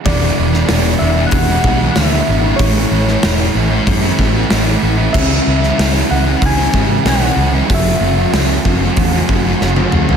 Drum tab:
CC |----------------|----------------|x---------------|----------------|
HH |o---o---o---o---|o---o---o---o---|----o---o---o---|o---o---o-------|
SD |---oo-------o---|---oo-----o-o---|---oo-----o-o---|----o-------o---|
T1 |----------------|----------------|----------------|-------------o--|
T2 |----------------|----------------|----------------|--------------o-|
FT |----------------|----------------|----------------|---------------o|
BD |o-------o-o-----|o-------o-o-----|o-------o-o-----|o-----o-o-o-----|